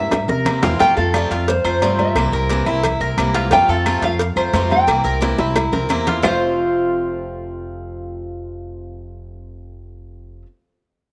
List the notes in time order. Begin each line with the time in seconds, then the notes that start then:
Already playing: C3 E3 A#3 C4 E4 E5
0.11 G2, muted steel-string acoustic guitar stroke, cowbell, high bongo, high conga, high timbale, low agogo, claves
0.28 C3 A#4, low bongo, low conga
0.45 E3 A#3 C4 E4, cowbell, low bongo, low conga, low agogo, claves
0.62 E2 E3 A#3 C4 E4 F4, cowbell, low bongo, low conga, low timbale, low agogo
0.79 F2 C3 F3 A3 C4 F4 G5, cowbell, low agogo
0.83 F4
0.97 F2 A3 C4 F4 A4 F5
1.14 C3 F3 A3 C4 F4 D5, cowbell, high conga, low agogo, claves
1.31 F2 A3 C4 F4 F5, cowbell, high conga, low agogo
1.48 C5, muted steel-string acoustic guitar stroke, cowbell, high conga
1.64 F2 A3 C4 F4 C5, high conga, low agogo, claves
1.82 G2 C3 F3 A3 C4 F4 D5, cowbell, high conga, low agogo
1.99 E5, high conga, low agogo
2.15 C2 C3 E3 A#3 C4 E4, cowbell, high conga, low agogo, claves
2.32 C2 A#3 C4 E4 A#4, high conga
2.50 C3 E3 A#3 C4 E4, cowbell, high conga, low agogo
2.66 C2 A#3 C4 E4, high conga, low agogo
2.84 muted steel-string acoustic guitar stroke, cowbell, high conga, low conga, low agogo, claves
3.00 C2 A#3 C4 E4 A#4, high conga
3.17 C2 C3 E3 A#3 C4 E4, cowbell, high conga, low agogo, claves
3.34 F4, cowbell, high conga, low agogo
3.51 F2 C3 F3 A3 C4 F4 G5, cowbell, low agogo
3.68 F2 A3 C4 F4 A4 F5, high conga
3.86 C3 F3 A3 C4 F4, cowbell, high conga, low agogo, claves
4.02 F2 C4 F4 F5, cowbell, high conga, low agogo
4.06 A3
4.19 muted steel-string acoustic guitar stroke, cowbell, high conga
4.36 F2 A3 C4 F4 C5, high conga, low agogo, claves
4.53 F2 C3 F3 A3 C4 F4, cowbell, high conga, low timbale, low agogo
4.70 G5, high conga, low agogo
4.87 C2 C3 E3 A#3 C4 E4, cowbell, high conga, low agogo, claves
5.04 C2 A#3 C4 E4 A#4, high conga
5.21 C3 E3 A#3 C4 E4, cowbell, high bongo, high conga, low agogo
5.38 C2 A#3 C4 E4, high bongo, high conga, low agogo
5.56 muted steel-string acoustic guitar stroke, cowbell, high bongo, high conga, low agogo, claves
5.72 C2 A#3 C4 E4 A#4, low bongo, low conga
5.89 E2 C3 E3 A#3 C4 E4, cowbell, low bongo, low agogo, claves
6.07 F4, cowbell, low bongo, low conga, low agogo
6.22 F1 F2 C3 F3 A3 C4 F4 C5 F5, low bongo, low conga, low timbale, claves